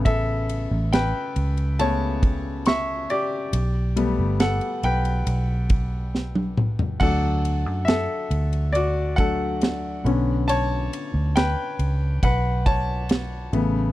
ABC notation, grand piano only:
X:1
M:4/4
L:1/8
Q:1/4=69
K:Bm
V:1 name="Grand piano"
[Ae]2 [Bg]2 [ca]2 [ec'] [Gd]- | [Gd]2 [Af] [Bg]4 z | [Af]2 [Ae]2 [Fd] [Af]2 z | [ca]2 [Bg]2 [Bf] [ca]2 z |]
V:2 name="Grand piano"
[C,A,B,]2 z2 [C,A,B,] z3 | z [G,A,B,] z6 | [F,A,D] z4 [F,A,D] z [D,B,C]- | [D,B,C]2 z4 z [C,A,B,] |]